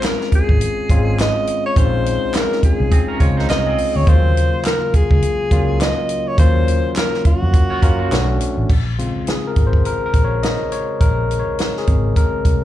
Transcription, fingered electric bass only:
0.32 muted fingered electric bass stroke
0.49 G#1
0.90 G#1
1.77 A#1
2.63 muted fingered electric bass stroke
2.80 C2
3.21 C#2
3.50 C2
3.96 D2
4.07 D#2
4.94 muted fingered electric bass stroke
5.11 C#2
5.52 C#2
6.38 D#2
7.25 muted fingered electric bass stroke
7.42 F2
7.83 F#2
8.12 B1
8.58 A1
8.70 A#1
9.16 muted fingered electric bass stroke
9.57 G#1
10.14 A#1
11.01 A#1
11.88 G#1
12.45 C2

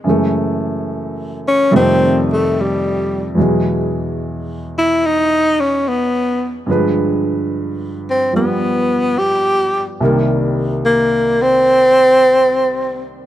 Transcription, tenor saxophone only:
1.48 C#4
1.76 C4
2.32 A3
2.61 G3
4.78 E4
5.06 D#4
5.60 C#4
5.88 B3
8.10 C4
8.36 B3
9.18 G4
10.85 A#3
11.42 C4

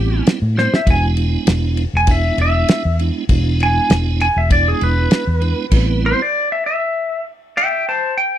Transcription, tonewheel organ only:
Already playing: G3 B3 C4 E4
0.55 G3 B3 C4 E4
0.86 G#3 B3 D4 E4
2.09 G#3 B3 D4 E4
2.99 G#3 B3 D4 E4
3.29 G#3 B3 D4 E4
4.49 G#3 B3 D4 E4
5.40 G#3 B3 D4 E4
5.71 G3 B3 C4 E4

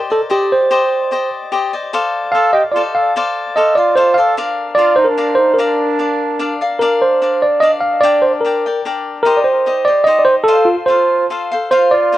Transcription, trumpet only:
2.32 A4
2.53 G4
2.73 F4
2.93 A4
3.56 A4
3.77 F4
3.97 F4
4.18 A4
4.77 F4
4.97 D#4
5.08 D4
5.37 D#4
5.57 D4
10.88 F4
11.72 F4
11.92 F4

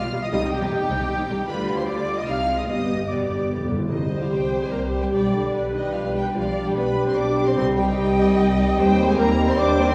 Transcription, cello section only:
0.04 B2
0.14 B2
0.32 C3
0.42 C3
0.61 C3
0.71 C3
0.81 C3
0.90 C3
1.00 C3
1.09 C3
1.19 C3
1.29 C3
1.48 D3
2.27 C3
2.68 G2
3.09 B2
3.30 G2
3.49 F2
3.69 G2
3.90 D#3
4.21 F3
4.31 G3
4.62 G#3
4.71 A#3
5.01 G3
5.12 G3
5.33 D3
5.74 D#3
5.94 F3
6.15 G3
6.35 F3
6.65 G3
6.76 B3
7.06 C4
7.17 D4
7.47 C4
7.57 C4
7.78 G3
8.77 G3
9.07 G#3
9.17 A#3
9.47 C4
9.57 D4
9.88 C4

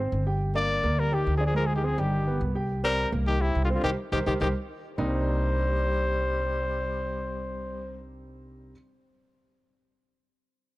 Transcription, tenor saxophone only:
0.55 A#3
0.98 G3
1.13 D#3
1.37 F3
1.47 F3
1.56 F3
1.66 F3
1.75 D#3
1.84 F3
1.98 D#3
2.84 G3
3.27 D#3
3.41 C3
3.65 D3
3.74 D3
3.83 D#3
4.12 D#3
4.26 D#3
4.40 D#3
4.98 G3

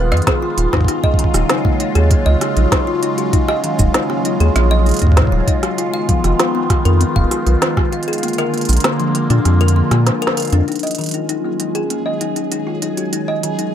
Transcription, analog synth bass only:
Already playing: D#1
0.12 F2
0.58 D#1
1.34 D#1
1.96 D#2
2.26 C#2
2.57 A#1
3.79 D#1
4.40 D#2
4.56 A#1
5.02 D#2
5.32 D#1
6.24 F1
6.85 F2
7.16 D#1
7.47 B1
8.69 A#1
9.30 A#2
9.46 F2
9.91 A#2
10.53 F2

